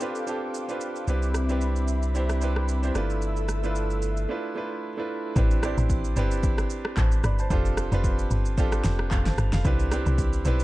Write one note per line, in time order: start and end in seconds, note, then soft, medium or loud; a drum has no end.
0.00 0.27 C4 medium
0.00 0.27 D4 medium
0.00 0.28 F4 medium
0.00 0.02 G4 medium
0.00 0.23 G4 medium
0.00 0.29 A4 medium
0.00 1.05 A4 medium
0.00 0.03 B4 medium
0.00 0.23 B4 medium
0.00 1.05 F5 medium
0.00 1.04 G5 medium
0.00 2.91 D6 medium
0.00 shaker medium
0.15 shaker soft
0.27 0.60 C4 medium
0.27 0.60 D4 medium
0.27 0.60 F4 medium
0.27 0.61 G4 medium
0.27 0.61 A4 medium
0.27 shaker medium
0.54 shaker medium
0.68 1.00 C4 medium
0.68 1.00 D4 medium
0.68 1.01 F4 medium
0.68 1.01 G4 medium
0.68 1.01 B4 medium
0.68 shaker medium
0.81 shaker medium
0.96 shaker medium
1.07 2.91 C2 medium
1.07 1.40 C4 medium
1.07 2.93 C4 medium
1.07 1.40 D4 medium
1.07 1.41 E4 medium
1.07 1.41 G4 medium
1.07 1.41 B4 medium
1.07 2.93 E5 medium
1.07 5.32 B5 medium
1.07 shaker medium
1.22 shaker soft
1.34 cross-stick loud
1.34 shaker loud
1.49 2.02 C4 medium
1.49 2.03 D4 medium
1.49 2.03 E4 medium
1.49 2.03 G4 medium
1.49 2.04 B4 medium
1.49 shaker medium
1.61 shaker medium
1.76 shaker medium
1.88 shaker medium
2.03 shaker medium
2.14 2.36 C4 medium
2.14 2.37 D4 medium
2.14 2.37 E4 medium
2.14 2.37 G4 medium
2.14 2.38 C5 loud
2.14 shaker medium
2.29 cross-stick medium
2.29 shaker medium
2.41 2.74 C4 medium
2.41 2.74 D4 medium
2.41 2.75 E4 medium
2.41 2.75 G4 medium
2.41 2.75 B4 medium
2.41 shaker medium
2.56 cross-stick medium
2.69 shaker medium
2.83 2.95 C4 medium
2.83 2.94 D4 medium
2.83 2.94 E4 medium
2.83 2.96 G4 medium
2.83 2.96 C5 medium
2.83 shaker soft
2.95 4.26 G1 medium
2.95 3.48 A3 medium
2.95 3.49 D4 medium
2.95 3.49 E4 medium
2.95 3.49 F4 medium
2.95 5.34 A4 medium
2.95 3.50 B4 loud
2.95 5.34 E5 medium
2.95 5.34 E6 medium
2.95 cross-stick medium
2.95 shaker medium
3.10 shaker medium
3.22 shaker medium
3.37 shaker soft
3.49 cross-stick medium
3.49 shaker medium
3.63 4.17 A3 medium
3.63 4.17 D4 medium
3.63 4.17 E4 medium
3.63 4.18 F4 medium
3.63 4.18 B4 medium
3.63 shaker medium
3.75 shaker medium
3.90 shaker soft
4.02 shaker medium
4.17 shaker medium
4.28 4.51 A3 medium
4.28 4.51 D4 medium
4.28 4.51 E4 medium
4.28 4.52 F4 medium
4.28 4.52 B4 medium
4.55 4.88 A3 medium
4.55 4.88 D4 medium
4.55 4.89 E4 medium
4.55 4.89 F4 medium
4.55 4.89 B4 medium
4.97 5.29 A3 medium
4.97 5.29 D4 medium
4.97 5.29 E4 medium
4.97 5.30 F4 medium
4.97 5.30 B4 medium
5.36 5.75 A1 loud
5.36 5.58 C4 medium
5.36 5.58 D4 medium
5.36 5.59 E4 medium
5.36 5.59 G4 medium
5.36 5.59 B4 medium
5.36 kick loud
5.36 shaker medium
5.51 shaker medium
5.62 6.07 C4 medium
5.62 6.07 D4 medium
5.62 6.07 E4 medium
5.62 6.08 G4 medium
5.62 6.08 D5 medium
5.62 cross-stick loud
5.62 shaker loud
5.78 6.14 A1 loud
5.78 shaker medium
5.90 kick loud
5.90 shaker medium
6.05 shaker medium
6.16 6.67 G1 medium
6.16 7.03 C4 medium
6.16 7.03 D4 medium
6.16 7.03 E4 medium
6.16 7.04 G4 medium
6.16 6.71 B4 loud
6.16 shaker medium
6.31 shaker medium
6.43 kick loud
6.43 shaker medium
6.58 cross-stick loud
6.58 shaker medium
6.70 shaker medium
6.85 cross-stick loud
6.97 7.22 A1 medium
6.97 7.23 C5 medium
6.97 7.23 A5 medium
6.97 kick loud
6.97 clap loud
6.97 shaker medium
7.12 shaker medium
7.24 7.49 G1 loud
7.24 7.38 D5 medium
7.24 7.38 B5 medium
7.24 cross-stick medium
7.24 shaker medium
7.39 7.65 C5 medium
7.39 7.64 A5 medium
7.39 shaker medium
7.50 7.89 F1 loud
7.50 7.83 C4 medium
7.50 7.83 D4 medium
7.50 7.84 F4 medium
7.50 7.84 G4 medium
7.50 7.84 A4 loud
7.50 kick loud
7.50 shaker medium
7.65 shaker medium
7.77 cross-stick loud
7.77 shaker loud
7.92 8.29 F1 loud
7.92 8.45 C4 medium
7.92 8.46 D4 medium
7.92 8.46 F4 medium
7.92 8.46 G4 medium
7.92 8.47 B4 loud
7.92 shaker medium
8.04 kick medium
8.04 shaker medium
8.19 shaker medium
8.31 8.81 G1 loud
8.31 shaker medium
8.45 shaker medium
8.57 9.44 C4 medium
8.57 9.44 D4 medium
8.57 9.44 F4 medium
8.57 9.45 G4 medium
8.57 9.11 A4 loud
8.57 kick loud
8.57 shaker medium
8.72 cross-stick loud
8.72 shaker medium
8.84 9.10 F1 loud
8.84 snare medium
8.84 shaker medium
8.99 cross-stick loud
9.11 9.36 F1 loud
9.11 9.26 A4 medium
9.11 9.26 F5 medium
9.11 kick loud
9.11 clap loud
9.11 shaker medium
9.26 9.52 C5 medium
9.26 9.52 A5 medium
9.26 snare medium
9.26 shaker medium
9.38 9.52 G1 loud
9.38 cross-stick medium
9.38 shaker medium
9.53 9.64 F1 medium
9.53 9.79 A4 medium
9.53 9.79 F5 medium
9.53 snare medium
9.53 shaker medium
9.64 10.04 C2 loud
9.64 9.86 C4 medium
9.64 9.87 D4 medium
9.64 9.87 E4 medium
9.64 9.87 G4 medium
9.64 9.88 B4 loud
9.64 kick loud
9.64 shaker medium
9.79 shaker medium
9.91 10.35 C4 medium
9.91 10.36 D4 medium
9.91 10.36 E4 medium
9.91 10.36 G4 medium
9.91 10.37 B4 medium
9.91 cross-stick loud
9.91 shaker loud
10.06 10.43 C2 loud
10.06 shaker medium
10.18 kick medium
10.18 shaker medium
10.33 shaker medium
10.45 10.64 B1 medium
10.45 10.64 C4 medium
10.45 10.64 D4 medium
10.45 10.64 E4 medium
10.45 10.64 G4 medium
10.45 10.64 B4 loud
10.45 shaker medium
10.60 shaker medium